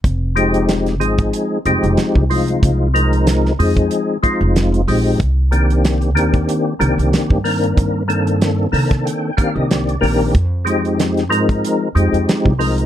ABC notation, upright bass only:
X:1
M:4/4
L:1/16
Q:"Swing 16ths" 1/4=93
K:Fdor
V:1 name="Upright bass" clef=bass
F,,,6 A,,,2 z2 F,,, F,,, z C,,3 | C,,6 F,,2 z3 F,,,3 B,,,2 | C,,6 E,,2 z2 C,, C,, z G,,3 | G,,6 C,2 z3 C,,3 B,,,2 |
F,,6 A,,2 z2 F,, F,, z C,,3 |]